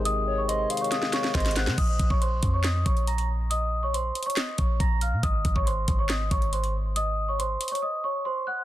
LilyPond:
<<
  \new Staff \with { instrumentName = "Celesta" } { \time 4/4 \key bes \minor \tempo 4 = 139 <ees'' ees'''>8. <des'' des'''>16 <c'' c'''>8. <des'' des'''>16 <ees'' ees'''>8 <des'' des'''>8 <c'' c'''>8 <ges'' ges'''>8 | <ees'' ees'''>8. <des'' des'''>16 <c'' c'''>8. <des'' des'''>16 <ees'' ees'''>8 <des'' des'''>8 <bes'' bes'''>8 r8 | <ees'' ees'''>8. <des'' des'''>16 <c'' c'''>8. <des'' des'''>16 <ees'' ees'''>8 <des'' des'''>8 <bes'' bes'''>8 <f'' f'''>8 | <ees'' ees'''>8. <des'' des'''>16 <c'' c'''>8. <des'' des'''>16 <ees'' ees'''>8 <des'' des'''>8 <c'' c'''>8 r8 |
<ees'' ees'''>8. <des'' des'''>16 <c'' c'''>8. <des'' des'''>16 <ees'' ees'''>8 <des'' des'''>8 <c'' c'''>8 <ges'' ges'''>8 | }
  \new Staff \with { instrumentName = "Soft synth lead" } { \time 4/4 \key bes \minor r8 des''8 ees''8 f''4. ees''8 c''8 | r1 | r1 | r1 |
r1 | }
  \new Staff \with { instrumentName = "Accordion" } { \clef bass \time 4/4 \key bes \minor <c ees aes>1 | r1 | r1 | r1 |
r1 | }
  \new Staff \with { instrumentName = "808-style bass" } { \clef bass \time 4/4 \key bes \minor aes,,4. r4. aes,,8. c16 | bes,,8 bes,,16 bes,,8. f,4 bes,,4.~ | bes,,4. r4 bes,,8 bes,,8. bes,16 | aes,,8 aes,,16 aes,,8. aes,,4 aes,,4.~ |
aes,,4. r2 r8 | }
  \new DrumStaff \with { instrumentName = "Drums" } \drummode { \time 4/4 hh4 \tuplet 3/2 { hh16 r16 r16 hh16 hh16 hh16 } <hh sn>16 sn16 <hh sn>16 sn16 <hh bd sn>32 hh32 <hh sn>32 hh32 <hh sn>16 sn16 | <cymc hh bd>8 <hh bd>16 bd16 hh8 <hh bd>8 <hc hh sn>8 <hh bd>16 hh16 hh16 hh8. | hh4 \tuplet 3/2 { hh16 r16 r16 hh16 hh16 hh16 } <hc hh sn>8 <hh bd>8 <hh bd>8 hh8 | <hh bd>8 <hh bd>16 bd16 hh8 <hh bd>8 <hc hh sn>8 <hh bd>16 hh16 hh16 hh8. |
hh4 \tuplet 3/2 { hh16 r16 r16 hh16 hh16 hh16 } r4 r4 | }
>>